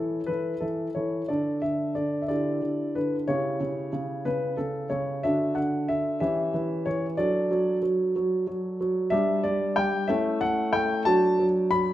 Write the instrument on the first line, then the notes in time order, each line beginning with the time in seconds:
grand piano
Already playing: E3 E4 A4 C#5
0.27 E3 E4 A4 B4
0.60 E3 E4 A4
0.95 E3 E4 A4 C#5
1.28 D3 D4 A4 D5
1.62 D3 E5
1.95 D3 D5
2.22 E5
2.28 D3 E4 G4 D5
2.62 D3
2.95 D3 B4
3.28 C#3 E4 G4 C#5
3.60 C#3
3.93 C#3
4.25 C#3 B4
4.57 C#3 A4
4.90 C#3 C#5
5.23 D3 D4 F#4 E5
5.55 D3 F#5
5.88 D3 E5
6.20 E3 C#4 G4 E5
6.54 E3
6.86 E3 C#5
7.17 F#3 D4 A4 D5
7.51 F#3
7.83 F#3
8.16 F#3
8.47 F#3
8.81 F#3
9.10 G3 D4 G4 E5
9.44 G3 D5
9.76 G3 G5
10.08 A3 C#4 E4 E5
10.41 A3 F#5
10.73 A3 G5
11.05 F#3 D4 F#4 A5
11.39 F#3
11.71 F#3 B5